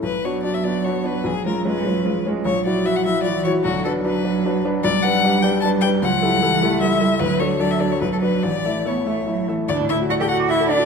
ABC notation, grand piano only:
X:1
M:3/4
L:1/16
Q:1/4=150
K:Bm
V:1 name="Grand piano"
B,,,2 [B,DF]2 [B,DF]2 [B,DF]2 [B,DF]2 [B,DF]2 | B,,,2 [^G,C^E]2 [G,CE]2 [G,CE]2 [G,CE]2 [G,CE]2 | ^A,,,2 [F,EF]2 [F,EF]2 [F,EF]2 [F,EF]2 [F,EF]2 | B,,,2 [F,DB]2 [F,DB]2 [F,DB]2 [F,DB]2 [F,DB]2 |
[K:D] B,,,2 [G,DB]2 [G,DB]2 [G,DB]2 [G,DB]2 [G,DB]2 | C,,2 [G,EA]2 [G,EA]2 [G,EA]2 [G,EA]2 [G,EA]2 | D,,2 [F,DA]2 [F,DA]2 [F,DA]2 B,,,2 [F,DB]2 | A,,,2 [A,Ee]2 [A,Ee]2 [A,Ee]2 [A,Ee]2 [A,Ee]2 |
D,, A,, A, F d A f d' f A d F |]